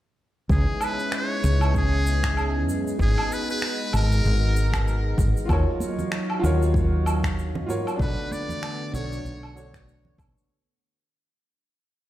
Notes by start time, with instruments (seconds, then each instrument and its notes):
0.49 fretless electric bass C#2, analog synth pad G#3 B3 C#4 D#4 E4, muted trumpet G#4, kick, cabasa
0.81 muted trumpet B4, cabasa, low woodblock
0.99 cabasa
1.12 muted trumpet C#5, finger snap, cabasa
1.44 fretless electric bass C#2, cabasa
1.61 cabasa, low woodblock
1.74 muted trumpet G#4, kick, cabasa
2.07 cabasa
2.24 finger snap, kick, cabasa
2.37 cabasa, low woodblock
2.68 fretless electric bass F#2, cabasa
2.87 cabasa
2.99 fretless electric bass G#1, analog synth pad F#4, muted trumpet G#4, kick, cabasa
3.18 low woodblock
3.32 muted trumpet B4, cabasa
3.50 muted trumpet B4, cabasa
3.62 finger snap, cabasa
3.93 fretless electric bass G#1, muted trumpet A#4, cabasa, low woodblock
4.12 cabasa
4.25 fretless electric bass G#1, cabasa
4.56 cabasa
4.73 finger snap, kick, cabasa, low woodblock
4.88 cabasa
5.18 fretless electric bass G#1, kick, cabasa
5.37 cabasa
5.45 fretless electric bass D#2, grand piano F4 F#4, kick, low woodblock
5.49 analog synth pad F#3 F5, grand piano A#4 C#5, cabasa
5.80 high conga, cabasa
5.99 low conga, cabasa
6.12 finger snap, cabasa
6.30 low woodblock
6.39 grand piano F4 F#4
6.44 fretless electric bass D#2, grand piano A#4 C#5, cabasa
6.62 cabasa
6.74 kick, cabasa
7.06 cabasa, low woodblock
7.23 finger snap, kick, cabasa
7.39 cabasa
7.55 low conga
7.66 fretless electric bass G#2, grand piano F4 F#4 A#4 C#5, high conga, cabasa
7.87 cabasa, low woodblock
7.96 fretless electric bass B1, analog synth pad D3 A3 B3 F#4, grand piano D4 F#4, kick
8.00 grand piano A4 B4, muted trumpet B4, cabasa
8.31 muted trumpet D5, high conga, cabasa
8.49 low conga, cabasa
8.63 finger snap, cabasa, low woodblock
8.92 fretless electric bass B1, grand piano D4 F#4 A4 C#5, muted trumpet C#5, cabasa
9.12 cabasa
9.25 fretless electric bass B1, cabasa
9.43 low woodblock
9.54 grand piano D4 F#4 A4 C#5, cabasa
9.74 finger snap, kick, cabasa
9.88 cabasa
10.05 low conga
10.18 fretless electric bass B1, kick, high conga, cabasa, low woodblock
10.38 cabasa